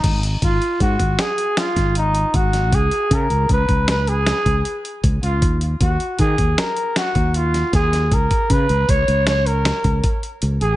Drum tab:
CC |x-------------|--------------|--------------|--------------|
HH |xxxxxxxxxxxxxx|xxxxxxxxxxxxxx|xxxxxxxxxxxxxx|xxxxxxxxxxxxxx|
SD |------o-oo---o|------o-o-----|------o-o--ooo|------o-o-----|
BD |o-o-oo---o--o-|o-o-oo---o--o-|o-o-oo---o--o-|ooo-o----oo---|